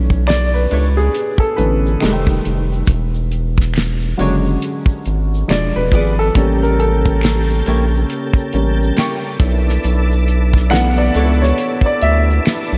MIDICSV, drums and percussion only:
0, 0, Header, 1, 2, 480
1, 0, Start_track
1, 0, Tempo, 869565
1, 1588, Time_signature, 4, 2, 24, 8
1, 7054, End_track
2, 0, Start_track
2, 0, Title_t, "Drums"
2, 53, Note_on_c, 9, 82, 40
2, 56, Note_on_c, 9, 36, 74
2, 108, Note_off_c, 9, 82, 0
2, 111, Note_off_c, 9, 36, 0
2, 149, Note_on_c, 9, 26, 59
2, 149, Note_on_c, 9, 82, 60
2, 157, Note_on_c, 9, 42, 92
2, 166, Note_on_c, 9, 38, 105
2, 204, Note_off_c, 9, 26, 0
2, 204, Note_off_c, 9, 82, 0
2, 212, Note_off_c, 9, 42, 0
2, 221, Note_off_c, 9, 38, 0
2, 295, Note_on_c, 9, 82, 45
2, 350, Note_off_c, 9, 82, 0
2, 392, Note_on_c, 9, 42, 70
2, 447, Note_off_c, 9, 42, 0
2, 541, Note_on_c, 9, 82, 45
2, 596, Note_off_c, 9, 82, 0
2, 631, Note_on_c, 9, 82, 60
2, 632, Note_on_c, 9, 42, 81
2, 686, Note_off_c, 9, 82, 0
2, 687, Note_off_c, 9, 42, 0
2, 762, Note_on_c, 9, 36, 94
2, 781, Note_on_c, 9, 82, 39
2, 818, Note_off_c, 9, 36, 0
2, 837, Note_off_c, 9, 82, 0
2, 868, Note_on_c, 9, 82, 42
2, 873, Note_on_c, 9, 42, 63
2, 923, Note_off_c, 9, 82, 0
2, 928, Note_off_c, 9, 42, 0
2, 1028, Note_on_c, 9, 82, 52
2, 1083, Note_off_c, 9, 82, 0
2, 1107, Note_on_c, 9, 26, 68
2, 1107, Note_on_c, 9, 82, 66
2, 1116, Note_on_c, 9, 42, 85
2, 1125, Note_on_c, 9, 38, 106
2, 1162, Note_off_c, 9, 26, 0
2, 1162, Note_off_c, 9, 82, 0
2, 1171, Note_off_c, 9, 42, 0
2, 1180, Note_off_c, 9, 38, 0
2, 1252, Note_on_c, 9, 36, 91
2, 1253, Note_on_c, 9, 82, 40
2, 1307, Note_off_c, 9, 36, 0
2, 1308, Note_off_c, 9, 82, 0
2, 1344, Note_on_c, 9, 82, 42
2, 1353, Note_on_c, 9, 42, 70
2, 1400, Note_off_c, 9, 82, 0
2, 1408, Note_off_c, 9, 42, 0
2, 1504, Note_on_c, 9, 82, 46
2, 1559, Note_off_c, 9, 82, 0
2, 1579, Note_on_c, 9, 82, 67
2, 1587, Note_on_c, 9, 36, 97
2, 1592, Note_on_c, 9, 42, 73
2, 1634, Note_off_c, 9, 82, 0
2, 1642, Note_off_c, 9, 36, 0
2, 1647, Note_off_c, 9, 42, 0
2, 1735, Note_on_c, 9, 82, 45
2, 1790, Note_off_c, 9, 82, 0
2, 1830, Note_on_c, 9, 42, 67
2, 1885, Note_off_c, 9, 42, 0
2, 1968, Note_on_c, 9, 82, 42
2, 1974, Note_on_c, 9, 36, 81
2, 1989, Note_on_c, 9, 38, 37
2, 2023, Note_off_c, 9, 82, 0
2, 2029, Note_off_c, 9, 36, 0
2, 2044, Note_off_c, 9, 38, 0
2, 2062, Note_on_c, 9, 26, 59
2, 2062, Note_on_c, 9, 82, 62
2, 2075, Note_on_c, 9, 42, 90
2, 2085, Note_on_c, 9, 38, 113
2, 2117, Note_off_c, 9, 26, 0
2, 2117, Note_off_c, 9, 82, 0
2, 2130, Note_off_c, 9, 42, 0
2, 2140, Note_off_c, 9, 38, 0
2, 2212, Note_on_c, 9, 82, 48
2, 2267, Note_off_c, 9, 82, 0
2, 2313, Note_on_c, 9, 42, 68
2, 2368, Note_off_c, 9, 42, 0
2, 2458, Note_on_c, 9, 82, 44
2, 2513, Note_off_c, 9, 82, 0
2, 2547, Note_on_c, 9, 82, 59
2, 2552, Note_on_c, 9, 42, 83
2, 2602, Note_off_c, 9, 82, 0
2, 2607, Note_off_c, 9, 42, 0
2, 2682, Note_on_c, 9, 36, 91
2, 2695, Note_on_c, 9, 82, 42
2, 2737, Note_off_c, 9, 36, 0
2, 2751, Note_off_c, 9, 82, 0
2, 2786, Note_on_c, 9, 82, 42
2, 2791, Note_on_c, 9, 42, 67
2, 2841, Note_off_c, 9, 82, 0
2, 2846, Note_off_c, 9, 42, 0
2, 2950, Note_on_c, 9, 82, 55
2, 3005, Note_off_c, 9, 82, 0
2, 3032, Note_on_c, 9, 26, 67
2, 3032, Note_on_c, 9, 82, 72
2, 3034, Note_on_c, 9, 42, 82
2, 3043, Note_on_c, 9, 38, 111
2, 3087, Note_off_c, 9, 26, 0
2, 3087, Note_off_c, 9, 82, 0
2, 3089, Note_off_c, 9, 42, 0
2, 3098, Note_off_c, 9, 38, 0
2, 3176, Note_on_c, 9, 82, 39
2, 3231, Note_off_c, 9, 82, 0
2, 3266, Note_on_c, 9, 36, 84
2, 3266, Note_on_c, 9, 82, 47
2, 3273, Note_on_c, 9, 42, 69
2, 3321, Note_off_c, 9, 36, 0
2, 3321, Note_off_c, 9, 82, 0
2, 3328, Note_off_c, 9, 42, 0
2, 3423, Note_on_c, 9, 82, 49
2, 3478, Note_off_c, 9, 82, 0
2, 3503, Note_on_c, 9, 82, 71
2, 3507, Note_on_c, 9, 36, 99
2, 3510, Note_on_c, 9, 42, 70
2, 3558, Note_off_c, 9, 82, 0
2, 3562, Note_off_c, 9, 36, 0
2, 3565, Note_off_c, 9, 42, 0
2, 3661, Note_on_c, 9, 82, 47
2, 3716, Note_off_c, 9, 82, 0
2, 3752, Note_on_c, 9, 42, 66
2, 3807, Note_off_c, 9, 42, 0
2, 3892, Note_on_c, 9, 82, 43
2, 3895, Note_on_c, 9, 36, 83
2, 3947, Note_off_c, 9, 82, 0
2, 3950, Note_off_c, 9, 36, 0
2, 3982, Note_on_c, 9, 26, 61
2, 3982, Note_on_c, 9, 82, 66
2, 3992, Note_on_c, 9, 42, 93
2, 4001, Note_on_c, 9, 38, 118
2, 4037, Note_off_c, 9, 26, 0
2, 4037, Note_off_c, 9, 82, 0
2, 4047, Note_off_c, 9, 42, 0
2, 4056, Note_off_c, 9, 38, 0
2, 4133, Note_on_c, 9, 82, 49
2, 4188, Note_off_c, 9, 82, 0
2, 4229, Note_on_c, 9, 42, 69
2, 4284, Note_off_c, 9, 42, 0
2, 4386, Note_on_c, 9, 82, 46
2, 4441, Note_off_c, 9, 82, 0
2, 4470, Note_on_c, 9, 42, 86
2, 4474, Note_on_c, 9, 82, 64
2, 4525, Note_off_c, 9, 42, 0
2, 4530, Note_off_c, 9, 82, 0
2, 4601, Note_on_c, 9, 36, 96
2, 4624, Note_on_c, 9, 82, 43
2, 4656, Note_off_c, 9, 36, 0
2, 4679, Note_off_c, 9, 82, 0
2, 4707, Note_on_c, 9, 42, 70
2, 4710, Note_on_c, 9, 82, 49
2, 4762, Note_off_c, 9, 42, 0
2, 4765, Note_off_c, 9, 82, 0
2, 4871, Note_on_c, 9, 82, 55
2, 4926, Note_off_c, 9, 82, 0
2, 4949, Note_on_c, 9, 42, 83
2, 4958, Note_on_c, 9, 26, 71
2, 4958, Note_on_c, 9, 38, 115
2, 4958, Note_on_c, 9, 82, 69
2, 5005, Note_off_c, 9, 42, 0
2, 5014, Note_off_c, 9, 26, 0
2, 5014, Note_off_c, 9, 38, 0
2, 5014, Note_off_c, 9, 82, 0
2, 5102, Note_on_c, 9, 82, 39
2, 5157, Note_off_c, 9, 82, 0
2, 5187, Note_on_c, 9, 36, 105
2, 5189, Note_on_c, 9, 42, 69
2, 5190, Note_on_c, 9, 82, 46
2, 5242, Note_off_c, 9, 36, 0
2, 5245, Note_off_c, 9, 42, 0
2, 5245, Note_off_c, 9, 82, 0
2, 5347, Note_on_c, 9, 82, 49
2, 5350, Note_on_c, 9, 38, 34
2, 5402, Note_off_c, 9, 82, 0
2, 5405, Note_off_c, 9, 38, 0
2, 5427, Note_on_c, 9, 82, 69
2, 5432, Note_on_c, 9, 42, 70
2, 5482, Note_off_c, 9, 82, 0
2, 5487, Note_off_c, 9, 42, 0
2, 5582, Note_on_c, 9, 82, 46
2, 5637, Note_off_c, 9, 82, 0
2, 5674, Note_on_c, 9, 42, 67
2, 5675, Note_on_c, 9, 82, 55
2, 5729, Note_off_c, 9, 42, 0
2, 5730, Note_off_c, 9, 82, 0
2, 5815, Note_on_c, 9, 36, 85
2, 5816, Note_on_c, 9, 82, 43
2, 5832, Note_on_c, 9, 38, 39
2, 5870, Note_off_c, 9, 36, 0
2, 5871, Note_off_c, 9, 82, 0
2, 5887, Note_off_c, 9, 38, 0
2, 5907, Note_on_c, 9, 26, 62
2, 5907, Note_on_c, 9, 82, 65
2, 5916, Note_on_c, 9, 42, 98
2, 5926, Note_on_c, 9, 38, 117
2, 5962, Note_off_c, 9, 26, 0
2, 5962, Note_off_c, 9, 82, 0
2, 5971, Note_off_c, 9, 42, 0
2, 5981, Note_off_c, 9, 38, 0
2, 6058, Note_on_c, 9, 82, 52
2, 6113, Note_off_c, 9, 82, 0
2, 6148, Note_on_c, 9, 82, 44
2, 6151, Note_on_c, 9, 42, 69
2, 6203, Note_off_c, 9, 82, 0
2, 6206, Note_off_c, 9, 42, 0
2, 6306, Note_on_c, 9, 82, 47
2, 6311, Note_on_c, 9, 38, 35
2, 6361, Note_off_c, 9, 82, 0
2, 6366, Note_off_c, 9, 38, 0
2, 6391, Note_on_c, 9, 42, 89
2, 6394, Note_on_c, 9, 82, 66
2, 6446, Note_off_c, 9, 42, 0
2, 6449, Note_off_c, 9, 82, 0
2, 6521, Note_on_c, 9, 36, 96
2, 6543, Note_on_c, 9, 82, 46
2, 6576, Note_off_c, 9, 36, 0
2, 6598, Note_off_c, 9, 82, 0
2, 6631, Note_on_c, 9, 42, 67
2, 6631, Note_on_c, 9, 82, 48
2, 6686, Note_off_c, 9, 42, 0
2, 6686, Note_off_c, 9, 82, 0
2, 6791, Note_on_c, 9, 82, 54
2, 6846, Note_off_c, 9, 82, 0
2, 6874, Note_on_c, 9, 42, 82
2, 6876, Note_on_c, 9, 26, 71
2, 6876, Note_on_c, 9, 82, 70
2, 6883, Note_on_c, 9, 38, 109
2, 6930, Note_off_c, 9, 42, 0
2, 6931, Note_off_c, 9, 26, 0
2, 6931, Note_off_c, 9, 82, 0
2, 6939, Note_off_c, 9, 38, 0
2, 7018, Note_on_c, 9, 82, 41
2, 7054, Note_off_c, 9, 82, 0
2, 7054, End_track
0, 0, End_of_file